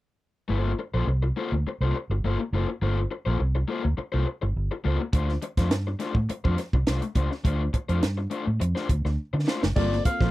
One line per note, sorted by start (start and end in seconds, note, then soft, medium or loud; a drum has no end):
0.48 0.72 G1 loud
0.48 0.70 A#3 medium
0.48 0.70 F4 medium
0.48 0.70 A4 medium
0.48 0.71 C5 medium
0.79 muted overdriven electric guitar stroke soft
0.94 1.05 A#1 medium
0.94 1.05 A#3 medium
0.94 1.05 F4 soft
0.94 1.05 A4 medium
0.94 1.04 C5 medium
1.07 1.30 C2 medium
1.07 muted overdriven electric guitar stroke soft
1.23 muted overdriven electric guitar stroke soft
1.37 1.52 A#3 medium
1.37 1.52 F4 medium
1.37 1.52 A4 medium
1.37 1.52 C5 loud
1.52 1.63 D2 medium
1.52 muted overdriven electric guitar stroke soft
1.67 muted overdriven electric guitar stroke soft
1.81 1.91 C2 medium
1.81 1.95 A#3 medium
1.81 1.95 F4 medium
1.81 1.95 A4 medium
1.81 1.95 C5 medium
1.96 muted overdriven electric guitar stroke soft
2.10 2.20 G1 medium
2.10 muted overdriven electric guitar stroke soft
2.24 2.36 G1 medium
2.24 2.39 A#3 medium
2.24 2.39 F4 medium
2.24 2.39 A4 medium
2.24 2.39 C5 medium
2.40 muted overdriven electric guitar stroke soft
2.53 2.64 F#1 loud
2.53 2.65 A#3 medium
2.53 2.65 F4 medium
2.53 2.65 A4 medium
2.53 2.66 C5 medium
2.69 muted overdriven electric guitar stroke soft
2.82 3.04 G1 loud
2.82 2.97 A#3 medium
2.82 2.97 F4 medium
2.82 2.98 A4 medium
2.82 2.98 C5 medium
3.11 muted overdriven electric guitar stroke soft
3.26 3.37 A#1 medium
3.26 3.37 A#3 medium
3.26 3.37 F4 soft
3.26 3.37 A4 soft
3.26 3.36 C5 medium
3.39 3.62 C2 medium
3.39 muted overdriven electric guitar stroke soft
3.55 muted overdriven electric guitar stroke soft
3.68 3.83 A#3 medium
3.68 3.83 F4 medium
3.68 3.83 A4 medium
3.68 3.82 C5 medium
3.84 3.95 D2 medium
3.84 muted overdriven electric guitar stroke soft
3.97 muted overdriven electric guitar stroke soft
4.12 4.24 C2 medium
4.12 4.25 A#3 medium
4.12 4.25 F4 medium
4.12 4.26 A4 medium
4.12 4.26 C5 medium
4.26 muted overdriven electric guitar stroke soft
4.42 4.53 G1 medium
4.42 muted overdriven electric guitar stroke soft
4.56 4.68 G1 medium
4.71 muted overdriven electric guitar stroke soft
4.84 4.97 C#2 medium
4.84 4.99 A#3 medium
4.84 5.00 F4 medium
4.84 5.00 A4 medium
4.84 4.99 C5 medium
5.00 muted overdriven electric guitar stroke soft
5.13 5.36 D2 medium
5.13 5.28 A3 medium
5.13 5.29 D4 medium
5.13 5.29 F4 medium
5.13 5.29 C5 medium
5.13 kick loud
5.13 closed hi-hat medium
5.29 snare soft
5.42 muted overdriven electric guitar stroke soft
5.42 closed hi-hat medium
5.57 5.71 F2 medium
5.57 5.69 A3 medium
5.57 5.69 D4 medium
5.57 5.68 F4 medium
5.57 5.68 C5 medium
5.57 kick medium
5.57 snare soft
5.57 closed hi-hat medium
5.71 5.94 G2 medium
5.71 muted overdriven electric guitar stroke soft
5.71 snare loud
5.71 closed hi-hat medium
5.87 muted overdriven electric guitar stroke soft
5.99 6.15 A3 medium
5.99 6.15 D4 medium
5.99 6.15 F4 medium
5.99 6.14 C5 medium
5.99 snare soft
5.99 closed hi-hat medium
6.15 6.26 A2 medium
6.15 muted overdriven electric guitar stroke soft
6.15 kick medium
6.29 muted overdriven electric guitar stroke soft
6.29 muted fingered electric bass stroke soft
6.29 closed hi-hat medium
6.44 6.55 F2 medium
6.44 6.57 A3 medium
6.44 6.57 D4 medium
6.44 6.58 F4 medium
6.44 6.58 C5 medium
6.44 kick medium
6.58 muted overdriven electric guitar stroke soft
6.58 snare soft
6.58 closed hi-hat medium
6.73 6.84 C2 medium
6.73 muted overdriven electric guitar stroke soft
6.73 kick medium
6.87 6.99 C2 medium
6.87 7.02 A3 medium
6.87 7.02 D4 medium
6.87 7.02 F4 medium
6.87 7.01 C5 medium
6.87 snare loud
6.87 closed hi-hat medium
7.02 muted overdriven electric guitar stroke soft
7.02 closed hi-hat medium
7.15 7.28 C#2 medium
7.15 7.27 A3 medium
7.15 7.28 D4 medium
7.15 7.28 F4 medium
7.15 7.28 C5 medium
7.15 kick medium
7.15 closed hi-hat medium
7.31 muted overdriven electric guitar stroke medium
7.31 snare soft
7.44 7.67 D2 loud
7.44 7.60 A3 medium
7.44 7.60 D4 medium
7.44 7.61 F4 medium
7.44 7.61 C5 medium
7.44 kick loud
7.44 closed hi-hat medium
7.74 muted overdriven electric guitar stroke soft
7.74 kick medium
7.74 closed hi-hat medium
7.89 8.00 F2 medium
7.89 8.00 A3 soft
7.89 8.00 D4 soft
7.89 8.00 F4 medium
7.89 7.99 C5 medium
7.89 closed hi-hat medium
8.03 8.26 G2 medium
8.03 muted overdriven electric guitar stroke soft
8.03 snare loud
8.03 closed hi-hat medium
8.17 muted overdriven electric guitar stroke soft
8.30 8.46 A3 medium
8.30 8.46 D4 medium
8.30 8.45 F4 medium
8.30 8.45 C5 medium
8.30 closed hi-hat medium
8.46 8.58 A2 medium
8.46 muted overdriven electric guitar stroke soft
8.60 8.73 F2 medium
8.60 muted overdriven electric guitar stroke soft
8.60 closed hi-hat medium
8.75 8.88 A3 medium
8.75 8.88 D4 medium
8.75 8.89 F4 medium
8.75 8.89 C5 medium
8.75 snare soft
8.89 9.02 D2 medium
8.89 muted overdriven electric guitar stroke soft
8.89 kick medium
8.89 closed hi-hat medium
9.05 9.16 D2 medium
9.05 muted overdriven electric guitar stroke soft
9.05 snare soft
9.33 9.44 D3 medium
9.33 muted overdriven electric guitar stroke soft
9.47 9.62 A3 medium
9.47 9.63 D4 medium
9.47 9.63 F4 medium
9.47 9.62 C5 medium
9.47 snare medium
9.63 9.74 F#1 medium
9.63 muted overdriven electric guitar stroke soft
9.63 snare medium
9.76 9.99 G1 loud
9.76 9.87 G3 medium
9.76 10.31 A#3 medium
9.76 9.92 A#3 medium
9.76 10.31 C4 medium
9.76 10.31 F4 medium
9.76 9.92 F4 medium
9.76 10.31 A4 medium
9.76 9.92 A4 medium
9.76 9.92 C5 medium
9.76 10.03 D5 loud
9.76 kick loud
9.76 crash loud
9.92 snare soft
10.05 10.31 F5 loud
10.05 muted overdriven electric guitar stroke soft
10.05 muted clean electric guitar stroke soft
10.05 kick loud
10.05 closed hi-hat medium
10.21 10.31 A#1 loud
10.21 10.30 F3 medium
10.21 10.31 A#3 medium
10.21 10.31 F4 medium
10.21 10.31 A4 medium
10.21 10.31 C5 medium
10.21 kick loud
10.21 snare soft